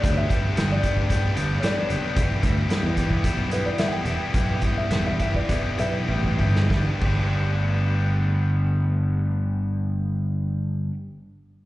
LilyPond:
<<
  \new Staff \with { instrumentName = "Upright piano" } { \time 4/4 \key g \major \tempo 4 = 102 d''16 e''4 d''4.~ d''16 <cis'' d''>4~ | <cis'' d''>2 r8 b'16 d''16 e''16 <fis'' g''>8.~ | <fis'' g''>8. e''8 e''16 e''16 d''8. <b' e''>4. | r1 |
r1 | }
  \new Staff \with { instrumentName = "Clean electric guitar" } { \time 4/4 \key g \major <g a d' g' b'>8 <g a d' g' b'>8 <g a d' g' b'>8 <g a d' g' b'>8 <g a d' g' b'>8 <g a d' g' b'>8 <g a d' g' b'>8 <g a d' g' b'>8 | <d e g b b'>8 <d e g b b'>8 <d e g b b'>8 <d e g b b'>8 <d e g b b'>8 <d e g b b'>8 <d e g b b'>8 <d e g b b'>8 | <d e g b b'>8 <d e g b b'>8 <d e g b b'>8 <d e g b b'>8 <d e g b b'>8 <d e g b b'>8 <d e g b b'>8 <d e g b b'>8 | <g a d' g' b'>8 <g a d' g' b'>2.~ <g a d' g' b'>8~ |
<g a d' g' b'>1 | }
  \new Staff \with { instrumentName = "Overdriven electric guitar" } { \clef bass \time 4/4 \key g \major <g, d g b d' g'>8 <g, d g b d' g'>8 <g, d g b d' g'>8 <g, d g b d' g'>8 <g, d g b d' g'>8 <g, d g b d' g'>8 <g, d g b d' g'>8 <g, d g b d' g'>8 | <e, b, e g e' g'>8 <e, b, e g e' g'>8 <e, b, e g e' g'>8 <e, b, e g e' g'>8 <e, b, e g e' g'>8 <e, b, e g e' g'>8 <e, b, e g e' g'>8 <e, b, e g e' g'>8 | <e, b, e g e' g'>8 <e, b, e g e' g'>8 <e, b, e g e' g'>8 <e, b, e g e' g'>8 <e, b, e g e' g'>8 <e, b, e g e' g'>8 <e, b, e g e' g'>8 <e, b, e g e' g'>8 | <g, d g b d' g'>8 <g, d g b d' g'>2.~ <g, d g b d' g'>8~ |
<g, d g b d' g'>1 | }
  \new Staff \with { instrumentName = "Picked electric bass" } { \clef bass \time 4/4 \key g \major d,8 r8 g,,8 r4 g,,8 r8 fis,,16 r16 | e,,16 r16 d,8 r16 e,8 e,,16 r16 b,,8 r8. e,,16 r16 | b,,8 r8 e,,8 r4 b,,8 a,,8 g,,8 | g,,16 r16 g,,2.~ g,,8~ |
g,,1 | }
  \new DrumStaff \with { instrumentName = "Drums" } \drummode { \time 4/4 <hh bd>8 <hh bd>8 <hh sn>8 <hh bd>16 bd16 <hh bd>8 hh8 <hh sn>8 hh8 | <hh bd>8 <hh bd>8 <hh sn>8 <hh bd>16 bd16 <hh bd>8 hh8 <hh sn>8 hh8 | <hh bd>8 <hh bd>8 <hh sn>8 <hh bd>16 bd16 <hh bd>8 hh8 bd16 bd16 bd16 sn16 | <bd sn>8 <cymc bd>8 r4 r4 r4 |
r4 r4 r4 r4 | }
>>